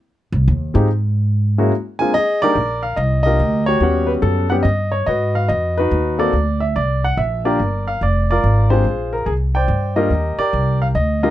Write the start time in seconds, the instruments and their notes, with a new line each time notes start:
0.32 upright bass C2
0.48 upright bass D#2
0.74 upright bass G#2, grand piano G#3 C4 D#4 F4 G4
1.58 grand piano G#3 A#3 C#4 E4 F#4
1.99 grand piano G#3 A#3 C4 D4 F4 G#5
2.14 grand piano G#4 D#5
2.42 grand piano G3 A#3 D4 D#4 G4 A#4 D5
2.55 upright bass A#1
2.83 grand piano F5
2.96 upright bass C2, grand piano D#5
3.23 grand piano G3 D4 G4 A#4 D#5
3.27 grand piano A#3 F4
3.39 upright bass D2
3.66 grand piano F#4 G4 C#5
3.80 upright bass D#2, grand piano G3 B3 C#4 F#5
4.07 grand piano B4
4.22 upright bass F#2, grand piano A4
4.50 grand piano G3 B3 C#4 G4 F#5
4.63 upright bass G2, grand piano D#5
4.92 grand piano C#5
5.06 upright bass G#2, grand piano F#4 B4 D#5
5.35 grand piano F5
5.48 upright bass F2, grand piano D#5
5.78 grand piano D#4 F#4 B4
5.91 upright bass D#2
6.18 grand piano A#3 C4 F#4 A4 D5
6.33 upright bass D2
6.60 grand piano E5
6.76 upright bass C2, grand piano D5
7.04 grand piano F#5
7.17 upright bass A#1, grand piano E5
7.45 grand piano A#3 D4 F4 G4 A#4 D5
7.59 upright bass G1
7.87 grand piano F5
8.01 upright bass F1, grand piano D5
8.31 grand piano F4 A#4 D5
8.44 upright bass G#1
8.70 grand piano G#3 C4 D4 F4 G4 G#4 C5
8.85 upright bass A#1
9.13 grand piano A#4
9.26 upright bass C2, grand piano G#4
9.55 grand piano C5 D5 G5
9.68 upright bass G2
9.96 grand piano G3 A#3 D4 F4 G4 A#4 D#5
10.10 upright bass D#2
10.38 grand piano G4 A#4 D5, muted upright bass stroke
10.53 upright bass C2
10.82 grand piano F5
10.95 upright bass D2, grand piano D#5
11.23 grand piano G3 A#3 D4 F4 G4 A#4 D#5